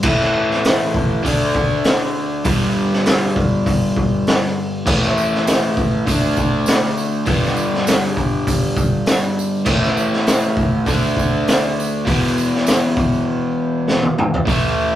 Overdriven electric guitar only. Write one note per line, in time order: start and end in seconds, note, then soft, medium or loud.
0.03 1.23 A2 medium
0.03 1.24 E3 medium
0.08 1.25 A3 loud
1.24 2.43 D3 medium
1.24 2.44 A3 medium
1.24 2.45 D4 medium
2.45 4.85 G2 medium
2.45 4.85 D3 medium
2.50 4.87 G3 loud
4.86 6.05 A2 medium
4.86 6.06 E3 loud
4.90 6.07 A3 loud
6.07 7.25 D3 medium
6.07 7.27 A3 medium
6.11 7.27 D4 loud
7.26 9.65 G2 medium
7.26 9.65 D3 medium
7.30 9.67 G3 loud
9.65 10.85 A2 medium
9.65 10.86 E3 loud
9.70 10.87 A3 loud
10.86 12.05 D3 medium
10.86 12.06 A3 medium
10.90 12.07 D4 medium
12.06 14.44 E2 medium
12.06 14.45 B2 loud
12.10 14.47 E3 medium
14.46 14.95 A2 medium
14.46 14.95 E3 medium
14.50 14.95 A3 loud